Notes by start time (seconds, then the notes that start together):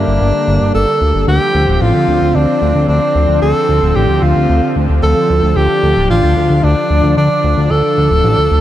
Already playing: D3 G3 A#3 D4
0.07 G1
0.21 G1
0.48 G1
0.61 G1
0.74 G1 A4
1.01 D2
1.15 G1
1.28 D2 D3 F3 C4 G4
1.55 D2
1.68 D1
1.81 A1 F4
1.95 D2
2.08 D2
2.22 D2
2.35 D2 D4
2.62 D2
2.75 D2
2.88 D2 D4
3.15 D2
3.29 D2
3.42 D2 A4
3.69 D2
3.82 D1
3.96 A1 G4
4.09 D2
4.22 D2 F4
4.36 D2
4.49 D2
4.76 D2
4.90 D2
5.03 D2 A4
5.30 D2
5.43 D2
5.56 D2 D4 G4
5.83 D2
5.96 D1
6.10 A1 F4
6.23 D2
6.37 D2
6.50 D2
6.63 D2 D4
6.90 D2
7.04 D2
7.17 D2 D4
7.44 D2
7.57 D2
7.71 D2 A4
7.98 D2
8.11 D1
8.24 A1
8.38 D2
8.51 D2